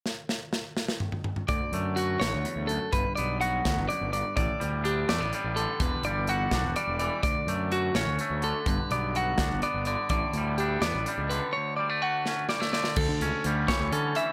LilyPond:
<<
  \new Staff \with { instrumentName = "Clean electric guitar" } { \time 6/8 \key d \major \tempo 4. = 84 r2. | d''4 fis'8 cis''4 a'8 | b'8 d''8 fis''4 d''8 d''8 | d''4 g'8 d''4 a'8 |
b'8 d''8 fis''4 d''8 d''8 | d''4 fis'8 cis''4 a'8 | b'8 d''8 fis''4 d''8 d''8 | d''4 g'8 d''4 b'8 |
cis''8 d''8 fis''4 d''8 d''8 | a'4 r8 cis''8 a'8 e''8 | }
  \new Staff \with { instrumentName = "Clean electric guitar" } { \clef bass \time 6/8 \key d \major << { r2. | r8 a8 fis'2 | r8 b8 fis'2 | r8 g8 d'8 a16 b16 g4~ |
g8 g8 fis'8 d'8 g4 | r8 a8 fis'8 cis'8 a4 | r8 b8 fis'8 d'8 b4 | r8 g8 d'8 b8 g4 |
r8 g16 a16 fis'8 cis'8 g16 a8. | r8 cis'8 g4 cis'4 | } \\ { r2. | d,4. d,8 e,8 fis,8 | g,4. e,8 fis,8 g,8 | a,2~ a,8 d8 |
e,2~ e,8 e8 | d,2~ d,8 d8 | g,2~ g,8 d8 | a,2~ a,8 d8 |
d,2~ d,8 d8 | d,4. e4 e8 | } >> }
  \new Staff \with { instrumentName = "Picked electric bass" } { \clef bass \time 6/8 \key d \major r2. | d,16 r16 fis,4 a,,16 d,16 r16 d,8 r16 | g,,16 r16 b,,4 d,16 g,,16 r16 g,,8 r16 | a,,16 r16 d,4 e,16 a,,16 r16 a,,8 r16 |
e,,16 r16 g,,4 b,,16 e,,16 r16 e,,8 r16 | d,16 r16 fis,4 a,,16 d,16 r16 d,8 r16 | g,,16 r16 b,,4 d,16 g,,16 r16 g,,8 r16 | a,,16 r16 d,4 e,16 a,,16 r16 cis,8 r16 |
r2. | d,16 d16 cis,16 r16 d,8 r16 d,16 d8 r8 | }
  \new DrumStaff \with { instrumentName = "Drums" } \drummode { \time 6/8 sn8 sn8 sn8 sn16 sn16 toml16 toml16 toml16 toml16 | <hh bd>8 hh8 hh8 <hh sn>8 hh8 hh8 | <hh bd>8 hh8 hh8 <hh bd sn>8 hh8 hh8 | <hh bd>8 hh8 hh8 <hh sn>8 hh8 hh8 |
<hh bd>8 hh8 hh8 <hh bd sn>8 hh8 hh8 | <hh bd>8 hh8 hh8 <hh sn>8 hh8 hh8 | <hh bd>8 hh8 hh8 <hh bd sn>8 hh8 hh8 | <hh bd>8 hh8 hh8 <hh sn>8 hh8 hh8 |
r4. sn8 sn16 sn16 sn16 sn16 | <cymc bd>8 hh8 hh8 <hh bd sn>8 hh8 hh8 | }
>>